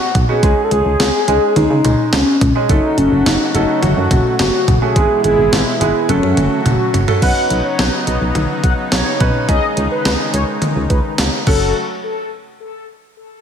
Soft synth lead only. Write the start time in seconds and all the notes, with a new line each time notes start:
Already playing: F#4
0.29 G#4
0.64 A4
0.72 G#4
1.56 D#4
2.13 C#4
2.70 D#4
2.98 C#4
3.26 D#4
3.55 D#4
3.83 F#4
4.39 F#4
4.82 G#4
5.24 G#4
5.53 E4
6.09 C#4
6.66 F#4